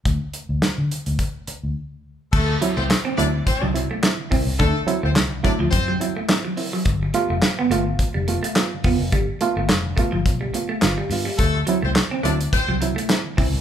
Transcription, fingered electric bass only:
X:1
M:4/4
L:1/16
Q:"Swing 16ths" 1/4=106
K:G
V:1 name="Fingered electric bass" clef=bass
D,, z2 D,, z D, z D,, z3 D,, z4 | D,,2 z C,, z2 D,,2 z C,,2 z3 C,, C,, | D,, z2 D,, C,,2 z D,, F,,2 z6 | G,,,2 z =F,,, z2 G,,,2 z F,,,2 z3 F,,, F,,, |
G,,, z2 G,,, =F,,,2 z G,,, B,,,2 z2 G,,, z G,, z | D,,2 z C,, z2 D,,2 z C,,2 z3 C,, C,, |]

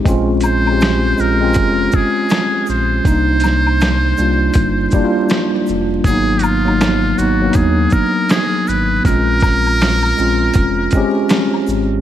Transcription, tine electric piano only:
X:1
M:4/4
L:1/16
Q:"Swing 16ths" 1/4=80
K:Bbdor
V:1 name="Tine electric piano"
[A,CDF]2 z [A,CDG]2 z [A,CDF] [A,CDF]6 z3 | [G,B,=DE]4- [G,B,DE] z [G,B,DF]3 z [G,B,D=EF]4- [G,B,DEF] z | [_G,B,_CE]2 z [G,B,CE]2 z [G,B,CE] [G,B,C=DE]6 z3 | [A,CDF]4- [A,CDF] z [A,CDF]3 z [A,CDG]4- [A,CDG] z |]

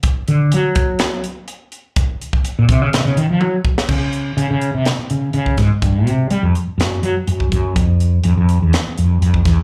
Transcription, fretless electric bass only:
X:1
M:4/4
L:1/16
Q:1/4=124
K:Bbphr
V:1 name="Fretless electric bass" clef=bass
z2 =D,2 ^F,6 z6 | z4 z B,, =C, D, C, D, E, F, G,2 z2 | [K:Db] D,4 D, D,2 C, z2 D,2 D,2 A,, z | =G,,2 C,2 =G, F,, z2 _G,,2 _G, z G,,2 G,,2 |
F,,4 F,, F,,2 _F,, z2 =F,,2 F,,2 _F,, z |]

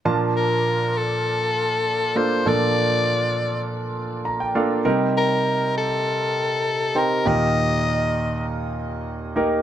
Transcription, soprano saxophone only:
X:1
M:4/4
L:1/8
Q:1/4=100
K:Bb
V:1 name="Soprano saxophone"
z B2 A4 c | d4 z4 | z B2 A4 B | e4 z4 |]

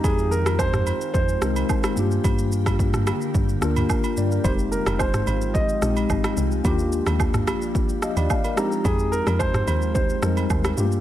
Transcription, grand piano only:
X:1
M:4/4
L:1/8
Q:1/4=109
K:Fdor
V:1 name="Grand piano"
A B c2 c3 z | z8 | c B c2 e3 z | z8 |
A B c2 c3 z |]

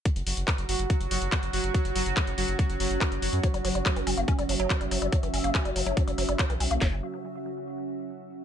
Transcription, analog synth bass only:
X:1
M:4/4
L:1/16
Q:1/4=142
K:none
V:1 name="Analog synth bass" clef=bass
z ^F,,, F,,, F,,, z F,,, F,,, F,,, z F,,, F,,, F,,, z F,,, F,,, F,,, | z ^F,,, F,,, F,,, z F,,, F,,, F,,, z F,,, F,,, F,,, z F,,, F,,, ^F,, | z ^F,,, F,,, F,,, z F,,, F,,, F,,, z F,,, F,,, F,,, z F,,, F,,, F,,, | z ^F,,, F,,, F,,, z F,,, F,,, F,,, z F,,, F,,, F,,, z B,,, B,,, B,,, |
^F,,,2 z12 z2 |]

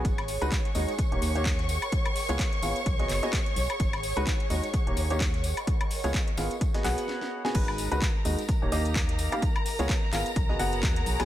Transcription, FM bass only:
X:1
M:4/4
L:1/16
Q:"Swing 16ths" 1/4=128
K:G#dor
V:1 name="FM bass" clef=bass
G,,,3 C,, z2 D,, z2 D,,, D,,4- D,, z | z3 C,, z2 G,,, z B,,,2 F,,, z3 B,,, z | G,,,3 C,, z2 D,, z2 D,,, D,,4- D,, z | z3 C,, z2 G,,, z3 B,,, z4 z |
G,,,3 C,, z2 D,, z2 D,,, D,,4- D,, z | z3 C,, z2 G,,, z B,,,2 F,,,2 D,,2 B,,, B,,, |]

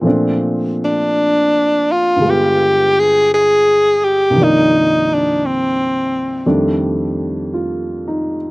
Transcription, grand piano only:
X:1
M:4/4
L:1/8
Q:"Swing" 1/4=57
K:Bb
V:1 name="Grand piano"
z8 | z6 F E |]
V:2 name="Grand piano" clef=bass
[B,,F,A,CD]4 [G,,D,_A,=B,F]4 | [C,,G,,E,F,B,d]4 [F,,E,G,A,D]4 |]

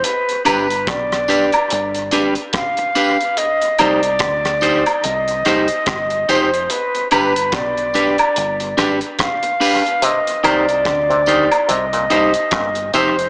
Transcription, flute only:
X:1
M:4/4
L:1/8
Q:"Swing 16ths" 1/4=72
K:Cm
V:1 name="Flute"
=B B d3 z f2 | e d3 e3 c | =B B d3 z f2 | e d3 e3 c |]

